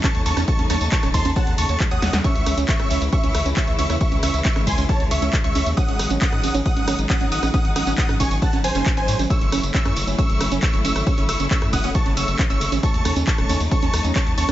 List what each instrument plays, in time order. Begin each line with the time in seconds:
Already playing: string section C#3 F#3 A3 D#4
0.04 synth pluck C#4 C#6, supersaw synth A5 C#6, kick, clap, closed hi-hat
0.15 analog synth bass D#2, closed hi-hat
0.26 analog synth bass D#2, synth pluck C#4 C#6, supersaw synth A5 C#6, open hi-hat, ride, tambourine
0.37 analog synth bass E2, synth pluck C#4, cross-stick, closed hi-hat, tambourine
0.48 supersaw synth A5 C#6, synth pluck C#6, kick, closed hi-hat, tambourine
0.59 analog synth bass D#2, synth pluck C#4, closed hi-hat
0.70 analog synth bass D#2, synth pluck C#4 C#6, supersaw synth A5 C#6, cross-stick, open hi-hat, ride, tambourine
0.81 analog synth bass D#2, closed hi-hat, tambourine
0.92 synth pluck C#4 C#6, supersaw synth A5 C#6, kick, clap, closed hi-hat
1.03 analog synth bass D#1, synth pluck C#4, cross-stick, closed hi-hat
1.14 analog synth bass D#2, supersaw synth A5 C6, synth pluck C6, kick, open hi-hat, ride, tambourine
1.25 analog synth bass D#2, synth pluck C#4, closed hi-hat, tambourine
1.36 synth pluck C#4 A5, supersaw synth F#5 A5, kick, open hi-hat, tambourine
1.47 analog synth bass D#2, closed hi-hat
1.58 analog synth bass D#2, synth pluck C#3 C#6, supersaw synth A5 C#6, open hi-hat, ride, tambourine
1.69 analog synth bass D#2, synth pluck C#5, closed hi-hat, tambourine
1.80 synth pluck G#3, kick, clap, closed hi-hat, tambourine
1.91 analog synth bass D#2, synth pluck C#5 D#6, supersaw synth F#5 D#6, closed hi-hat
2.02 analog synth bass D#2, synth pluck C#4, snare, open hi-hat, ride, tambourine
2.13 analog synth bass D#2, snare, closed hi-hat, tambourine
2.24 string section E3 G#3 E4, synth pluck C#4 C#6, supersaw synth E5 C#6, kick, closed hi-hat, tambourine
2.35 analog synth bass C#2, closed hi-hat
2.46 analog synth bass C#2, synth pluck C#4, cross-stick, open hi-hat, ride, tambourine
2.57 analog synth bass C#2, synth pluck C#4, closed hi-hat, tambourine
2.68 supersaw synth E5 C#6, synth pluck C#6, kick, clap, closed hi-hat, tambourine
2.79 analog synth bass G#1, synth pluck C#4, cross-stick, closed hi-hat
2.90 analog synth bass C#2, synth pluck C#4, open hi-hat, ride, tambourine
3.02 analog synth bass C#2, closed hi-hat, tambourine
3.12 synth pluck C#4 C#6, supersaw synth E5 C#6, kick, closed hi-hat, tambourine
3.24 analog synth bass C#2, synth pluck C#4, closed hi-hat
3.35 analog synth bass C#2, cross-stick, open hi-hat, ride, tambourine
3.46 analog synth bass C#2, synth pluck C#4, closed hi-hat, tambourine
3.57 synth pluck C#4 C#6, supersaw synth E5 C#6, kick, clap, closed hi-hat
3.68 analog synth bass C#2, closed hi-hat
3.79 analog synth bass C#2, synth pluck C#4 C#6, supersaw synth E5 C#6, open hi-hat, ride, tambourine
3.90 analog synth bass D#2, synth pluck C#4, cross-stick, closed hi-hat, tambourine
4.01 supersaw synth E5 C#6, synth pluck C#6, kick, closed hi-hat, tambourine
4.12 analog synth bass C#2, synth pluck C#4, closed hi-hat
4.23 analog synth bass C#2, synth pluck C#4 C#6, supersaw synth E5 C#6, cross-stick, open hi-hat, ride, tambourine
4.34 analog synth bass C#2, closed hi-hat, tambourine
4.45 synth pluck C#4 C#6, supersaw synth E5 C#6, kick, clap, closed hi-hat, tambourine
4.56 analog synth bass G#1, synth pluck C#4, cross-stick, closed hi-hat
4.67 analog synth bass C#2, supersaw synth G#5 C6, synth pluck C6, kick, open hi-hat, ride, tambourine
4.78 analog synth bass C#2, synth pluck C#4, closed hi-hat, tambourine
4.89 synth pluck C#4 A5, supersaw synth C#5 A5, kick, closed hi-hat, tambourine
5.00 analog synth bass C#2, closed hi-hat
5.11 analog synth bass C#2, synth pluck C#4 C#6, supersaw synth E5 C#6, open hi-hat, ride, tambourine
5.22 analog synth bass C#2, synth pluck C#4, closed hi-hat, tambourine
5.33 kick, clap, closed hi-hat, tambourine
5.44 analog synth bass C#2, synth pluck C#4 C#6, supersaw synth E5 C#6, closed hi-hat
5.55 analog synth bass C#2, synth pluck C#4, open hi-hat, ride, tambourine
5.66 analog synth bass D#2, closed hi-hat, tambourine
5.77 string section F#3 D#4, synth pluck C#4 D#6, supersaw synth F#5 D#6, kick, closed hi-hat, tambourine
5.88 analog synth bass G#1, synth pluck C#4, closed hi-hat
5.99 analog synth bass G#1, cross-stick, open hi-hat, ride, tambourine
6.10 analog synth bass G#1, synth pluck C#4, closed hi-hat, tambourine
6.21 synth pluck C#4 D#6, supersaw synth F#5 D#6, kick, clap, closed hi-hat, tambourine
6.32 analog synth bass G#2, cross-stick, closed hi-hat
6.43 analog synth bass G#1, synth pluck C#4, open hi-hat, ride, tambourine
6.54 analog synth bass G#1, synth pluck C#4, closed hi-hat, tambourine
6.66 supersaw synth F#5 D#6, synth pluck D#6, kick, closed hi-hat, tambourine
6.77 analog synth bass G#1, synth pluck C#4, closed hi-hat
6.88 analog synth bass G#1, synth pluck C#4, cross-stick, open hi-hat, ride, tambourine
6.99 analog synth bass G#1, closed hi-hat, tambourine
7.10 synth pluck C#4 D#6, supersaw synth F#5 D#6, kick, clap, closed hi-hat, tambourine
7.21 analog synth bass G#1, synth pluck C#4, closed hi-hat
7.32 analog synth bass G#1, supersaw synth F#5 D#6, synth pluck D#6, open hi-hat, ride, tambourine
7.43 analog synth bass A1, synth pluck C#4, cross-stick, closed hi-hat, tambourine
7.54 synth pluck C#4 D#6, supersaw synth F#5 D#6, kick, closed hi-hat, tambourine
7.65 analog synth bass G#1, closed hi-hat
7.76 analog synth bass G#1, synth pluck C#4 D#6, supersaw synth F#5 D#6, cross-stick, open hi-hat, ride, tambourine
7.87 analog synth bass G#1, synth pluck C#4, closed hi-hat, tambourine
7.98 supersaw synth F#5 D#6, synth pluck D#6, kick, clap, closed hi-hat, tambourine
8.09 analog synth bass G#2, synth pluck C#4, cross-stick, closed hi-hat
8.20 analog synth bass G#1, synth pluck C#4 C#6, supersaw synth G#5 C#6, kick, open hi-hat, ride, tambourine
8.31 analog synth bass G#1, closed hi-hat, tambourine
8.42 synth pluck C#4 A5, supersaw synth F#5 A5, kick, closed hi-hat, tambourine
8.53 analog synth bass G#1, synth pluck C#4, closed hi-hat
8.64 analog synth bass G#1, supersaw synth C5 G#5, synth pluck G#5, open hi-hat, ride, tambourine
8.75 analog synth bass F#1, synth pluck C#4, closed hi-hat, tambourine
8.86 synth pluck C#4, kick, clap, closed hi-hat, tambourine
8.97 analog synth bass G#1, supersaw synth C5 G#5, synth pluck G#5, closed hi-hat
9.08 analog synth bass G#2, synth pluck C#5, open hi-hat, ride, tambourine
9.19 analog synth bass G#1, synth pluck C#4, closed hi-hat, tambourine
9.30 string section C#3 A3 E4, supersaw synth C#6 E6, synth pluck E6, kick, closed hi-hat, tambourine
9.41 analog synth bass F#1, synth pluck C#4, closed hi-hat
9.52 analog synth bass F#1, synth pluck C#4, cross-stick, open hi-hat, ride, tambourine
9.63 analog synth bass F#1, closed hi-hat, tambourine
9.74 synth pluck C#4 E6, supersaw synth C#6 E6, kick, clap, closed hi-hat
9.85 analog synth bass F#2, synth pluck C#4, cross-stick, closed hi-hat
9.96 analog synth bass F#1, open hi-hat, ride, tambourine
10.07 analog synth bass F#1, synth pluck C#4, closed hi-hat, tambourine
10.18 synth pluck C#4 E6, supersaw synth C#6 E6, kick, closed hi-hat, tambourine
10.29 analog synth bass F#1, closed hi-hat
10.40 analog synth bass F#1, synth pluck C#4, cross-stick, open hi-hat, ride, tambourine
10.52 analog synth bass F#1, synth pluck C#4, closed hi-hat, tambourine
10.62 supersaw synth C#6 E6, synth pluck E6, kick, clap, closed hi-hat, tambourine
10.74 analog synth bass F#1, synth pluck C#4, closed hi-hat
10.84 analog synth bass F#1, synth pluck C#4 E6, supersaw synth C#6 E6, open hi-hat, ride, tambourine
10.96 analog synth bass G#1, cross-stick, closed hi-hat, tambourine
11.07 synth pluck C#4 E6, supersaw synth C#6 E6, kick, closed hi-hat, tambourine
11.18 analog synth bass F#1, synth pluck C#4, closed hi-hat
11.29 analog synth bass F#1, supersaw synth C#6 E6, synth pluck E6, cross-stick, open hi-hat, ride, tambourine
11.40 analog synth bass F#1, synth pluck C#4, closed hi-hat, tambourine
11.51 synth pluck C#4 E6, supersaw synth C#6 E6, kick, clap, closed hi-hat, tambourine
11.62 analog synth bass F#2, cross-stick, closed hi-hat
11.73 analog synth bass F#1, synth pluck C#4 D#6, supersaw synth F#5 D#6, kick, open hi-hat, ride, tambourine
11.84 analog synth bass F#1, synth pluck C#4, closed hi-hat, tambourine
11.95 supersaw synth A5 C#6, synth pluck C#6, kick, closed hi-hat, tambourine
12.06 analog synth bass F#1, synth pluck C#4, closed hi-hat
12.17 analog synth bass F#1, synth pluck C#4 E6, supersaw synth C#6 E6, open hi-hat, ride, tambourine
12.28 analog synth bass F#1, closed hi-hat, tambourine
12.39 synth pluck C#4, kick, clap, closed hi-hat, tambourine
12.50 analog synth bass F#1, synth pluck C#4 E6, supersaw synth C#6 E6, closed hi-hat
12.61 analog synth bass F#1, open hi-hat, ride, tambourine
12.72 analog synth bass G#1, synth pluck C#4, closed hi-hat, tambourine
12.83 string section A3 D#4, synth pluck C#4 C#6, supersaw synth A5 C#6, kick, closed hi-hat, tambourine
12.94 analog synth bass D#2, closed hi-hat
13.05 analog synth bass D#2, synth pluck C#4, cross-stick, open hi-hat, ride, tambourine
13.16 analog synth bass D#2, synth pluck C#4, closed hi-hat, tambourine
13.27 supersaw synth A5 C#6, synth pluck C#6, kick, clap, closed hi-hat
13.38 analog synth bass D#1, synth pluck C#4, cross-stick, closed hi-hat
13.49 analog synth bass D#2, synth pluck C#4, open hi-hat, ride, tambourine
13.60 analog synth bass D#2, closed hi-hat, tambourine
13.71 synth pluck C#4 C#6, supersaw synth A5 C#6, kick, closed hi-hat, tambourine
13.82 analog synth bass D#2, synth pluck C#4, closed hi-hat
13.94 analog synth bass D#2, cross-stick, open hi-hat, ride, tambourine
14.05 analog synth bass D#2, synth pluck C#4, closed hi-hat, tambourine
14.15 synth pluck C#4 C#6, supersaw synth A5 C#6, kick, clap, closed hi-hat, tambourine
14.26 analog synth bass D#2, closed hi-hat
14.38 analog synth bass D#2, synth pluck C#4 C#6, supersaw synth A5 C#6, open hi-hat, ride, tambourine
14.49 analog synth bass E2, synth pluck C#4, cross-stick, closed hi-hat, tambourine